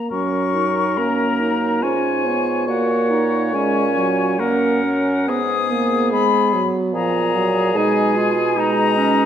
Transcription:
0.00 0.11 A#3 soft
0.00 0.10 A#5 soft
0.10 1.84 F#2 medium
0.10 0.99 F#3 soft
0.10 0.55 C#4 soft
0.10 1.84 A#4 soft
0.10 0.99 C#6 medium
0.54 0.99 D#4 soft
0.97 1.85 A#3 soft
0.97 1.41 C#4 soft
0.97 1.84 A#5 medium
1.40 1.83 D#4 soft
1.82 2.70 G#2 soft
1.82 2.26 C#4 soft
1.82 2.70 F4 soft
1.82 2.67 C#5 soft
1.82 2.68 G#5 medium
2.25 2.70 B3 soft
2.68 4.41 A#2 medium
2.68 3.56 A#3 soft
2.68 3.12 F#4 soft
2.68 4.41 C#5 medium
2.68 3.56 F#5 medium
3.10 3.55 D#4 medium
3.54 3.84 G#3 soft
3.54 4.39 C#4 medium
3.54 4.41 G#5 medium
3.97 4.41 F#3 medium
4.39 5.31 F#2 medium
4.39 4.84 A#3 medium
4.39 5.28 C#4 medium
4.39 5.28 A#4 soft
4.39 5.31 F#5 medium
4.84 5.30 C#4 medium
5.28 6.67 G#2 medium
5.28 5.72 B3 medium
5.28 7.46 B3 medium
5.28 6.64 G#4 medium
5.28 6.12 D#6 medium
5.71 6.14 A#3 medium
6.12 6.54 G#3 medium
6.12 6.67 B5 medium
6.53 6.95 F#3 medium
6.93 7.77 A#2 medium
6.93 7.36 F3 medium
6.93 8.60 G#4 medium
6.93 7.78 A#5 medium
7.35 7.74 F#3 medium
7.75 9.26 B2 medium
7.75 8.31 G#3 medium
7.75 8.18 D#4 medium
7.75 8.62 G#5 medium
8.16 8.59 F4 medium
8.57 9.26 G#3 medium
8.57 8.96 D#4 medium
8.57 9.26 D#4 medium
8.57 9.26 A#5 loud
8.97 9.26 C#4 medium

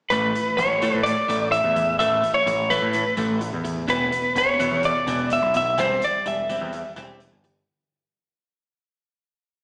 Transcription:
0.10 0.32 A1 medium
0.10 0.33 A2 medium
0.10 0.34 E3 medium
0.10 0.34 A3 medium
0.10 0.59 B4 medium
0.10 closed hi-hat medium
0.35 0.56 A2 medium
0.35 0.56 E3 medium
0.35 closed hi-hat medium
0.57 0.90 A1 medium
0.57 0.80 A2 medium
0.57 0.80 E3 medium
0.57 1.03 C#5 medium
0.57 closed hi-hat medium
0.82 1.04 A2 medium
0.82 1.04 E3 medium
0.82 1.05 A3 loud
0.82 closed hi-hat medium
0.94 1.15 A2 medium
1.03 1.27 A2 medium
1.03 1.27 E3 medium
1.03 1.48 D5 medium
1.03 closed hi-hat medium
1.28 1.60 A1 medium
1.28 1.51 A2 medium
1.28 1.51 E3 medium
1.28 1.51 A3 medium
1.28 closed hi-hat medium
1.52 1.74 A2 medium
1.52 1.74 E3 medium
1.52 1.96 E5 medium
1.52 closed hi-hat medium
1.64 1.96 E2 medium
1.76 1.97 A2 medium
1.76 1.98 E3 medium
1.76 closed hi-hat medium
1.99 2.21 A1 medium
1.99 2.22 A2 medium
1.99 2.22 E3 medium
1.99 2.22 A3 medium
1.99 2.32 E5 medium
1.99 closed hi-hat medium
2.23 2.45 A2 medium
2.23 2.45 E3 medium
2.23 closed hi-hat medium
2.34 2.71 C#5 medium
2.46 2.78 A1 medium
2.46 2.68 A2 medium
2.46 2.68 E3 medium
2.46 closed hi-hat medium
2.70 2.93 A2 medium
2.70 2.93 E3 medium
2.70 2.94 A3 medium
2.70 3.14 B4 medium
2.70 closed hi-hat medium
2.82 3.03 A2 medium
2.93 3.15 A2 medium
2.93 3.16 E3 medium
2.93 closed hi-hat medium
3.17 3.50 A1 medium
3.17 3.40 A2 medium
3.17 3.40 E3 medium
3.17 3.40 A3 medium
3.17 closed hi-hat medium
3.41 3.63 A2 medium
3.41 3.63 E3 medium
3.41 closed hi-hat medium
3.53 3.85 E2 medium
3.64 3.86 A2 medium
3.64 3.86 E3 medium
3.64 closed hi-hat medium
3.88 4.10 E1 medium
3.88 4.11 E2 medium
3.88 4.11 B2 medium
3.88 4.11 E3 medium
3.88 4.38 B4 medium
3.88 closed hi-hat medium
4.12 4.34 E2 medium
4.12 4.34 B2 medium
4.12 closed hi-hat medium
4.35 4.67 E1 medium
4.35 4.57 E2 medium
4.35 4.57 B2 medium
4.35 4.85 C#5 medium
4.35 closed hi-hat medium
4.59 4.82 E2 medium
4.59 4.82 B2 medium
4.59 4.82 E3 medium
4.59 closed hi-hat medium
4.71 4.92 E2 medium
4.83 5.05 E2 medium
4.83 5.32 D5 loud
4.83 closed hi-hat medium
5.07 5.38 E1 medium
5.07 5.29 E2 medium
5.07 5.30 B2 medium
5.07 5.30 E3 medium
5.07 closed hi-hat medium
5.30 5.52 E2 medium
5.30 5.53 B2 medium
5.30 5.54 E5 medium
5.30 closed hi-hat medium
5.42 5.74 B1 medium
5.54 5.76 E2 medium
5.54 5.76 B2 medium
5.54 5.80 E5 medium
5.54 closed hi-hat medium
5.78 5.99 E1 medium
5.78 6.00 E3 medium
5.78 6.01 G3 medium
5.78 6.01 C4 medium
5.78 6.03 C5 medium
5.78 closed hi-hat medium
6.02 6.24 E3 medium
6.02 6.24 G3 medium
6.02 6.25 D5 medium
6.02 closed hi-hat medium
6.26 6.57 E1 medium
6.26 6.47 E3 medium
6.26 6.47 G3 medium
6.26 6.93 E5 medium
6.26 closed hi-hat medium
6.49 6.71 E3 medium
6.49 6.72 G3 medium
6.49 6.72 C4 loud
6.49 closed hi-hat medium
6.61 6.82 E2 medium
6.73 6.94 E3 medium
6.73 6.94 G3 medium
6.73 closed hi-hat medium
6.96 7.28 E1 medium
6.96 7.19 E3 medium
6.96 7.19 G3 medium
6.96 7.19 C4 medium
6.96 closed hi-hat medium
7.20 7.41 E3 medium
7.20 7.42 G3 medium
7.20 closed hi-hat medium
7.32 7.63 G1 medium
7.44 7.65 E3 medium
7.44 7.65 G3 medium
7.44 closed hi-hat medium

